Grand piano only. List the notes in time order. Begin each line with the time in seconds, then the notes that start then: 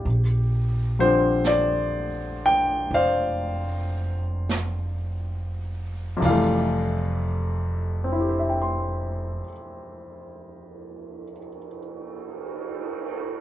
Already playing: G4
0.99 D3 F3 G3 C4 C5
1.47 D5
2.46 G5
2.94 C5 D5 F5
6.17 F2 C3
6.23 E3 G3 F5
6.29 A3
8.04 C4
8.12 E4
8.20 G4
8.29 C5
8.39 E5
8.49 G5
8.62 C6